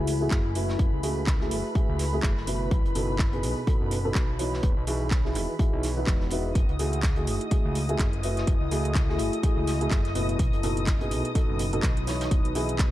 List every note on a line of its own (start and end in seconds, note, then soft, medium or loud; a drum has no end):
0.00 0.29 C#2 medium
0.00 2.71 E4 medium
0.00 3.36 A4 medium
0.00 6.57 B4 medium
0.00 0.42 D#5 medium
0.00 0.26 F#5 medium
0.00 2.71 G#5 medium
0.00 6.56 B5 medium
0.07 closed hi-hat medium
0.07 open hi-hat loud
0.21 0.36 A3 medium
0.21 0.36 E4 medium
0.21 0.36 F#4 medium
0.21 0.36 G#4 loud
0.31 0.77 F#1 medium
0.31 kick loud
0.31 snare loud
0.31 clap loud
0.31 closed hi-hat medium
0.55 0.81 A3 medium
0.55 0.81 E4 medium
0.55 0.81 F#4 medium
0.55 0.81 B4 medium
0.55 closed hi-hat medium
0.55 open hi-hat loud
0.69 snare medium
0.79 0.91 F#1 medium
0.79 kick loud
0.79 closed hi-hat medium
0.93 1.02 C#2 medium
1.03 1.53 C#2 loud
1.03 1.20 A3 medium
1.03 1.20 E4 medium
1.03 1.20 F#4 medium
1.03 1.20 G#4 medium
1.03 closed hi-hat medium
1.03 open hi-hat loud
1.27 kick loud
1.27 snare loud
1.27 clap loud
1.27 closed hi-hat medium
1.40 1.66 A3 medium
1.40 1.66 E4 medium
1.40 1.66 F#4 medium
1.40 1.66 G#4 medium
1.40 snare soft
1.51 1.63 F#1 medium
1.51 closed hi-hat medium
1.51 open hi-hat loud
1.75 2.01 A3 medium
1.75 2.01 E4 medium
1.75 2.01 F#4 medium
1.75 2.01 G#4 medium
1.75 kick loud
1.75 closed hi-hat medium
1.89 2.21 C#2 loud
1.99 snare soft
1.99 closed hi-hat medium
1.99 open hi-hat loud
2.13 2.28 A3 medium
2.13 2.28 E4 medium
2.13 2.28 F#4 medium
2.13 2.28 G#4 loud
2.22 2.69 F#1 medium
2.22 kick loud
2.22 snare loud
2.22 clap loud
2.22 closed hi-hat medium
2.37 snare soft
2.47 2.70 B2 medium
2.47 2.70 A3 medium
2.47 2.70 E4 medium
2.47 2.70 F#4 medium
2.47 2.70 B4 medium
2.47 closed hi-hat medium
2.47 open hi-hat loud
2.71 2.83 B1 loud
2.71 6.55 D#4 medium
2.71 kick loud
2.71 closed hi-hat medium
2.85 2.94 F#1 medium
2.85 closed hi-hat soft
2.95 3.45 F#1 loud
2.95 3.12 B2 medium
2.95 3.12 B3 medium
2.95 3.12 D#4 medium
2.95 3.12 F#4 medium
2.95 3.12 A4 medium
2.95 closed hi-hat medium
2.95 open hi-hat loud
3.09 5.41 B4 medium
3.19 kick loud
3.19 snare loud
3.19 clap loud
3.19 closed hi-hat medium
3.28 4.63 A5 medium
3.33 3.58 B2 medium
3.33 3.58 B3 medium
3.33 3.58 D#4 medium
3.33 3.58 F#4 medium
3.33 3.58 G#4 medium
3.33 closed hi-hat soft
3.43 3.55 B1 medium
3.43 closed hi-hat medium
3.43 open hi-hat loud
3.67 3.93 B2 medium
3.67 3.93 B3 medium
3.67 3.93 D#4 medium
3.67 3.93 F#4 medium
3.67 3.93 A4 medium
3.67 kick loud
3.67 closed hi-hat medium
3.81 4.13 F#1 loud
3.91 closed hi-hat medium
3.91 open hi-hat loud
4.05 4.20 B2 medium
4.05 4.20 B3 medium
4.05 4.20 D#4 medium
4.05 4.20 F#4 medium
4.05 4.20 A4 loud
4.15 4.61 B1 medium
4.15 kick loud
4.15 snare loud
4.15 clap loud
4.15 closed hi-hat medium
4.39 4.62 E3 medium
4.39 4.62 B3 medium
4.39 4.62 D#4 medium
4.39 4.62 F#4 medium
4.39 4.62 C#5 medium
4.39 closed hi-hat medium
4.39 open hi-hat loud
4.54 snare medium
4.63 4.75 E1 loud
4.63 kick loud
4.63 closed hi-hat loud
4.77 4.86 B1 medium
4.77 6.55 G#4 medium
4.86 5.37 B1 loud
4.86 5.04 E3 medium
4.86 5.04 D#4 medium
4.86 5.04 E4 medium
4.86 5.04 F#4 medium
4.86 5.04 G#4 medium
4.86 7.74 F#5 medium
4.86 closed hi-hat medium
4.86 open hi-hat loud
5.11 kick loud
5.11 snare loud
5.11 clap loud
5.11 closed hi-hat medium
5.25 5.50 E3 medium
5.25 5.50 D#4 medium
5.25 5.50 E4 medium
5.25 5.50 F#4 medium
5.25 5.50 G#4 medium
5.25 snare soft
5.35 5.47 E1 medium
5.35 clap soft
5.35 closed hi-hat medium
5.35 open hi-hat loud
5.59 5.85 E3 medium
5.59 5.85 D#4 medium
5.59 5.85 E4 medium
5.59 5.85 F#4 medium
5.59 5.85 G#4 medium
5.59 kick loud
5.59 closed hi-hat medium
5.73 6.05 B1 loud
5.83 snare soft
5.83 closed hi-hat medium
5.83 open hi-hat loud
5.97 6.22 E3 medium
5.97 6.22 D#4 medium
5.97 6.22 E4 medium
5.97 6.22 F#4 medium
5.97 6.22 B4 medium
6.07 6.53 E1 medium
6.07 kick loud
6.07 snare loud
6.07 clap loud
6.07 closed hi-hat medium
6.20 snare soft
6.30 6.54 D#4 medium
6.30 6.54 E4 medium
6.30 6.54 F#4 medium
6.30 6.54 B4 medium
6.30 closed hi-hat medium
6.30 open hi-hat loud
6.55 6.67 F#1 medium
6.55 10.39 E4 medium
6.55 12.91 D#5 medium
6.55 12.91 D#6 medium
6.55 kick loud
6.55 closed hi-hat medium
6.68 6.78 C#2 medium
6.68 11.03 A4 medium
6.68 closed hi-hat soft
6.73 10.39 G#5 medium
6.79 7.29 C#2 loud
6.79 6.96 A3 medium
6.79 6.96 E4 medium
6.79 6.96 F#4 medium
6.79 6.96 G#4 medium
6.79 closed hi-hat medium
6.79 open hi-hat loud
6.93 closed hi-hat soft
7.03 kick loud
7.03 snare loud
7.03 clap loud
7.03 closed hi-hat medium
7.16 7.42 A3 medium
7.16 7.42 E4 medium
7.16 7.42 F#4 medium
7.16 7.42 G#4 medium
7.16 closed hi-hat soft
7.27 7.39 F#1 medium
7.27 closed hi-hat medium
7.27 open hi-hat loud
7.41 closed hi-hat soft
7.51 7.77 A3 medium
7.51 7.77 E4 medium
7.51 7.77 F#4 medium
7.51 7.77 G#4 medium
7.51 kick loud
7.51 closed hi-hat medium
7.65 7.97 C#2 medium
7.75 closed hi-hat medium
7.75 open hi-hat loud
7.89 8.04 A3 medium
7.89 8.04 E4 medium
7.89 8.04 F#4 medium
7.89 8.04 G#4 loud
7.89 closed hi-hat soft
7.99 8.45 F#1 medium
7.99 kick loud
7.99 snare loud
7.99 clap loud
7.99 closed hi-hat medium
8.13 closed hi-hat soft
8.23 8.49 A3 medium
8.23 8.49 E4 medium
8.23 8.49 F#4 medium
8.23 8.49 B4 medium
8.23 closed hi-hat medium
8.23 open hi-hat loud
8.37 snare medium
8.37 closed hi-hat soft
8.47 8.59 F#1 loud
8.47 kick loud
8.47 closed hi-hat medium
8.61 8.70 C#2 medium
8.71 9.21 C#2 loud
8.71 8.88 A3 medium
8.71 8.88 E4 medium
8.71 8.88 F#4 medium
8.71 8.88 G#4 medium
8.71 closed hi-hat medium
8.71 open hi-hat loud
8.85 closed hi-hat soft
8.95 kick loud
8.95 snare loud
8.95 clap loud
8.95 closed hi-hat medium
9.09 9.34 A3 medium
9.09 9.34 E4 medium
9.09 9.34 F#4 medium
9.09 9.34 G#4 medium
9.09 snare soft
9.18 9.31 F#1 medium
9.18 closed hi-hat medium
9.18 open hi-hat medium
9.33 closed hi-hat medium
9.43 9.69 A3 medium
9.43 9.69 E4 medium
9.43 9.69 F#4 medium
9.43 9.69 G#4 medium
9.43 kick loud
9.43 closed hi-hat medium
9.57 9.89 C#2 loud
9.67 snare soft
9.67 closed hi-hat medium
9.67 open hi-hat loud
9.81 9.96 A3 medium
9.81 9.96 E4 medium
9.81 9.96 F#4 medium
9.81 9.96 G#4 loud
9.81 closed hi-hat medium
9.91 10.37 F#1 medium
9.91 kick loud
9.91 snare loud
9.91 clap loud
9.91 closed hi-hat medium
10.05 snare soft
10.05 closed hi-hat soft
10.15 10.38 B2 medium
10.15 10.38 A3 medium
10.15 10.38 E4 medium
10.15 10.38 F#4 medium
10.15 10.38 B4 medium
10.15 closed hi-hat medium
10.15 open hi-hat medium
10.29 closed hi-hat soft
10.39 10.51 B1 loud
10.39 12.91 D#4 medium
10.39 kick loud
10.39 closed hi-hat medium
10.52 10.62 F#1 medium
10.52 12.91 B4 medium
10.52 closed hi-hat soft
10.63 11.13 F#1 loud
10.63 10.80 B2 medium
10.63 10.80 B3 medium
10.63 10.80 D#4 medium
10.63 10.80 F#4 medium
10.63 10.80 A4 medium
10.63 closed hi-hat medium
10.63 open hi-hat medium
10.77 closed hi-hat medium
10.87 kick loud
10.87 snare loud
10.87 clap loud
10.87 closed hi-hat medium
11.01 11.26 B2 medium
11.01 11.26 B3 medium
11.01 11.26 D#4 medium
11.01 11.26 F#4 medium
11.01 11.26 G#4 medium
11.01 12.31 A5 medium
11.01 closed hi-hat soft
11.11 11.23 B1 medium
11.11 closed hi-hat medium
11.11 open hi-hat medium
11.25 closed hi-hat medium
11.35 11.61 B2 medium
11.35 11.61 B3 medium
11.35 11.61 D#4 medium
11.35 11.61 F#4 medium
11.35 11.61 A4 medium
11.35 kick loud
11.35 closed hi-hat medium
11.49 11.81 F#1 loud
11.59 closed hi-hat medium
11.59 open hi-hat loud
11.73 11.88 B2 medium
11.73 11.88 B3 medium
11.73 11.88 D#4 medium
11.73 11.88 F#4 medium
11.73 11.88 A4 loud
11.73 closed hi-hat medium
11.83 12.29 B1 medium
11.83 kick loud
11.83 snare loud
11.83 clap loud
11.83 closed hi-hat medium
11.97 closed hi-hat soft
12.07 12.30 E3 medium
12.07 12.30 B3 medium
12.07 12.30 D#4 medium
12.07 12.30 F#4 medium
12.07 12.30 C#5 medium
12.07 snare medium
12.07 closed hi-hat medium
12.07 open hi-hat loud
12.21 snare loud
12.21 closed hi-hat medium
12.21 closed hi-hat soft
12.31 12.43 E1 medium
12.31 kick loud
12.31 closed hi-hat medium
12.45 12.54 B1 medium
12.45 closed hi-hat soft
12.52 12.91 B1 loud
12.52 12.72 E3 medium
12.52 12.72 D#4 medium
12.52 12.72 E4 medium
12.52 12.72 F#4 medium
12.52 12.91 G#4 medium
12.52 12.72 G#4 medium
12.52 closed hi-hat medium
12.52 open hi-hat loud
12.69 closed hi-hat medium
12.79 kick loud
12.79 snare loud
12.79 clap loud
12.79 closed hi-hat medium